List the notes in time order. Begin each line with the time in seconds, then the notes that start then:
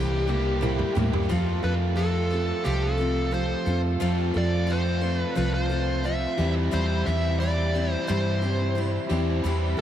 Already playing: C2 C3 E3 G3 A#3 E4 G4 A#4 C5
0.10 A#3 E4 G4
0.27 G3 A#3 E4 G4, high tom
0.61 C3 G3 A#3 E4 G4 A#4 C5, mid tom
0.79 A#3 E4 G4, mid tom
0.95 A2 G3 A#3 E4 G4, floor tom
1.12 G2 A#3 E4 G4, floor tom
1.29 F2 F3 A3 C4 F4 A4
1.63 F2 C4 F4 A4 B4
1.96 F3 C4 F4 A4
2.30 C4 F4 A4
2.64 C2 F3 C4 F4 G4 A4
2.83 A4
2.98 C4 F4 A4
3.31 F3 C4 F4 A4 C5
3.66 F2 C4 F4 A4
4.00 F2 F3 A3 C4 F4 A4
4.34 F2 C4 F4 A4 D5
4.67 F3 C4 F4 A4
4.71 C5
5.01 C4 F4 A4
5.19 B4
5.35 C2 F3 C4 F4 A4 B4
5.54 C5
5.69 C4 F4 A4
6.04 F3 C4 F4 A4 E5
6.37 E2 E3 G3 C4 E4 G4
6.71 E2 E3 G3 C4 E4 G4 C5
7.06 E2 C4 E4 G4 E5
7.40 G3 C4 E4 G4 D5
7.74 C4 E4 G4
7.93 C5
8.07 G2 E3 G3 C4 E4 G4 C5
8.42 C4 E4 G4
8.75 G3 C4 E4 G4
9.09 E2 E3 G3 C4 E4 G4
9.44 E2 E3 G3 C4 E4 G4
9.77 G4